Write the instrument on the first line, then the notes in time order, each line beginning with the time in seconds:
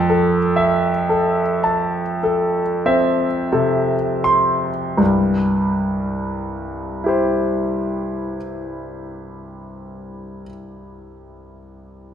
grand piano
Already playing: F2 A5
0.09 A4
0.56 E5
1.09 A4
1.64 A5
2.23 A4
2.86 C4 E5
3.52 C3 A4
4.24 C6
4.97 C2 G2
7.04 E4 G4
7.09 C5